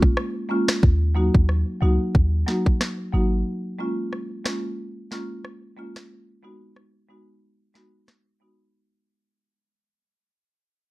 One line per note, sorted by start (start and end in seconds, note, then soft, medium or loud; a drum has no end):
0.02 0.16 A#1 medium
0.02 kick medium
0.17 cross-stick loud
0.49 0.64 G#3 medium
0.49 0.64 A#3 medium
0.49 0.65 C#4 medium
0.49 0.65 F4 loud
0.68 cross-stick medium
0.68 snare loud
0.83 1.30 D#2 medium
0.83 kick loud
1.15 1.30 F#3 medium
1.15 1.30 A#3 medium
1.15 1.31 D#4 medium
1.15 1.31 F#4 medium
1.35 1.64 D#2 loud
1.35 kick medium
1.49 cross-stick medium
1.81 1.99 C#2 medium
1.81 1.96 F#3 medium
1.81 1.96 A#3 medium
1.81 1.97 D#4 medium
1.81 1.97 F#4 medium
2.15 2.45 D#2 loud
2.15 kick medium
2.47 2.62 F#3 medium
2.47 2.62 A#3 medium
2.47 2.63 D#4 medium
2.47 2.63 F#4 medium
2.47 snare medium
2.66 kick medium
2.81 cross-stick medium
2.81 snare loud
3.12 3.43 G#1 medium
3.12 3.28 F#3 medium
3.12 3.28 A#3 medium
3.12 3.29 D#4 medium
3.12 3.29 F#4 medium
3.79 3.94 G#3 medium
3.79 3.94 A#3 medium
3.79 3.95 C#4 medium
3.79 3.95 F4 medium
4.13 cross-stick medium
4.44 4.60 G#3 medium
4.44 4.60 A#3 medium
4.44 4.60 C#4 medium
4.44 4.61 F4 medium
4.44 cross-stick medium
4.44 snare loud
5.11 5.26 G#3 medium
5.11 5.26 A#3 medium
5.11 5.27 C#4 medium
5.11 5.27 F4 medium
5.11 snare medium
5.45 cross-stick medium
5.77 5.92 G#3 medium
5.77 5.92 A#3 medium
5.77 5.93 C#4 medium
5.77 5.93 F4 loud
5.96 cross-stick medium
5.96 snare loud
6.43 6.58 G#3 medium
6.43 6.58 B3 medium
6.43 6.58 D#4 medium
6.43 6.59 F#4 medium
6.76 cross-stick medium
7.09 7.24 G#3 medium
7.09 7.24 B3 medium
7.09 7.24 D#4 medium
7.09 7.25 F#4 medium
7.74 7.90 G#3 medium
7.74 7.90 B3 medium
7.74 7.90 D#4 medium
7.74 7.91 F#4 medium
7.74 snare medium
8.08 cross-stick medium
8.08 snare loud
8.40 8.56 G#3 medium
8.40 8.56 B3 medium
8.40 8.56 D#4 medium
8.40 8.57 F#4 medium